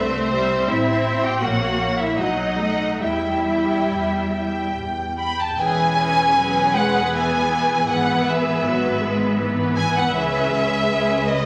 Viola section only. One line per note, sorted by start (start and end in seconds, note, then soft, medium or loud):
0.00 0.34 A3 medium
0.35 0.70 G3 medium
0.71 1.43 C4 medium
1.42 2.19 A#3 medium
2.19 2.60 F#3 soft
2.60 3.03 A3 soft
3.03 5.17 G3 soft
5.59 6.32 E3 medium
5.59 7.08 C#4 soft
6.36 6.74 F#3 medium
6.74 7.12 G#3 medium
7.12 7.49 E3 medium
7.12 7.87 B3 medium
7.50 8.63 E3 soft
7.88 10.11 B3 medium
8.65 9.02 F#3 medium
9.01 9.38 G#3 medium
9.39 10.13 E3 soft
10.14 10.52 E3 medium
10.14 10.90 C#4 medium
10.53 11.46 G#3 soft
10.91 11.46 C#4 medium